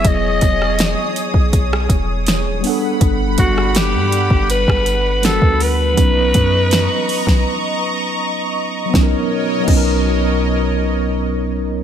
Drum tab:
CC |----------------|----------------|----------------|----x-----------|
HH |x-x-x-x-x-x-x-o-|x-x-x-x-x-x-x-o-|x-x-x-o---------|----------------|
SD |---ro----r--o---|---ro----r--o---|----o--o--------|o---------------|
BD |o-o----oo-o-----|o-o----o-o---o--|o-o----o--------|o---o-----------|